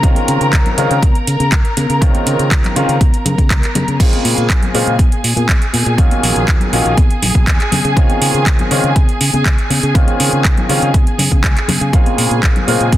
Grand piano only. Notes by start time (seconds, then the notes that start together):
0.03 D#3 G#3 C4 C#4 F4
0.77 D#3 G#3 C4 C#4 F4
2.01 D#3 G#3 C4 C#4 F4
2.76 D#3 G#3 C4 C#4 F4
3.99 C#3 G#3 A#3 C4 F4
4.74 C#3 G#3 A#3 C4 F4
5.97 D#3 F#3 A#3 C#4 F4
6.73 D#3 F#3 A#3 C#4 F4
7.96 D#3 G#3 C4 C#4 F4
8.71 D#3 G#3 C4 C#4 F4
9.94 D#3 G#3 C4 C#4 F4
10.69 D#3 G#3 C4 C#4 F4
11.93 C#3 G#3 A#3 C4 F4
12.67 C#3 G#3 A#3 C4 F4